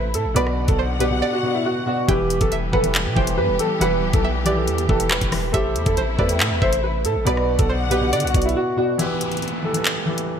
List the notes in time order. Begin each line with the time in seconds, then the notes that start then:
Already playing: A1 C3 E3 A3 E4 A4 B4 C5 E5 G5
0.14 A2 A4, closed hi-hat
0.25 A1
0.34 B1 B2 D3 B3 F#4 B4 D5 F#5, closed hi-hat
0.47 cross-stick
0.68 B1 A4, kick, closed hi-hat
0.79 C5
0.99 B2 B3 F#4 G4 B4 D5, closed hi-hat
1.10 B2 B3 F#4 D5
1.22 D5
1.33 F#4
1.43 B2 B3 F#4 D5
1.55 E4
1.65 F#4
1.86 B2 B3 F#4 D5
2.07 E1 E3 G3 B3 E4 G4 B4 G5, kick, closed hi-hat
2.30 closed hi-hat
2.41 E1 A4, kick, closed hi-hat
2.52 E1 E5, closed hi-hat
2.72 E1 E3 E4 G4 A4 B4 F#5, kick
2.83 E3 E4 G4 B4, closed hi-hat
2.95 clap
3.06 B2
3.15 E1 E3 E4 G4 B4 C5 G5, kick
3.27 closed hi-hat
3.38 G2 B4
3.49 E1
3.59 A4, closed hi-hat
3.79 E1 E3 E4 G4 B4 F#5, closed hi-hat
4.03 D1
4.13 B1 A4, kick, closed hi-hat
4.24 E5
4.45 E3 E4 G4 B4 D5, closed hi-hat
4.55 E3 E4 G4 A4
4.68 E2, closed hi-hat
4.78 closed hi-hat
4.87 E1 E3 E4 G4 A4 B4, kick
5.00 closed hi-hat
5.11 B4, clap
5.21 E1, kick, closed hi-hat
5.31 E3 E4 G4 B4, cross-stick, open hi-hat
5.52 A1 C3 A3 E4 G4 A4 C5 E5, kick, closed hi-hat
5.75 E2, closed hi-hat
5.86 E2 A4, kick, closed hi-hat
5.97 A1 C5, closed hi-hat
6.17 E2 A3 A4 B4 C5 D5 E5, kick
6.28 A3 A4 C5 G5, closed hi-hat
6.40 A2, clap
6.51 E2
6.60 A1 A3 A4 C5 E5, kick
6.73 closed hi-hat
6.83 B4
7.05 A2 A4, closed hi-hat
7.16 A1
7.25 B1 B2 D3 B3 F#4 B4 D5 F#5, closed hi-hat
7.37 cross-stick
7.59 B1 A4, kick, closed hi-hat
7.69 C5
7.90 B2 B3 F#4 G4 B4 D5, closed hi-hat
8.01 B2 B3 F#4 D5
8.13 D3 D5, closed hi-hat
8.20 B1 F#4, closed hi-hat
8.27 closed hi-hat
8.33 B1 B2 B3 F#4 D5, kick, closed hi-hat
8.42 E4, closed hi-hat
8.49 closed hi-hat
8.56 F#4
8.76 B2 B3 F#4 D5
8.98 E3 E4 G4 B4, closed hi-hat, downlifter
9.21 closed hi-hat
9.32 closed hi-hat
9.37 closed hi-hat
9.42 closed hi-hat
9.48 closed hi-hat
9.62 E3 E4 G4 A4
9.73 E3 E4 G4 B4, closed hi-hat
9.86 clap
10.06 E3 E4 G4 B4
10.18 closed hi-hat